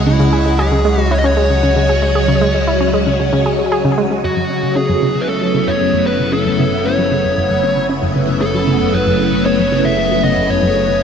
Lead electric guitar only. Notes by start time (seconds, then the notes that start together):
0.07 E4
0.59 G#4
1.02 F#4
1.11 C#5
1.18 D#5
1.26 C#5
4.24 F#4
4.76 G#4
5.21 B4
5.29 A4
5.68 C#5
6.07 B4
6.33 A4
6.85 C#5
8.41 A4
8.94 B4
9.46 C#5
9.85 E5
10.24 D#5
10.50 C#5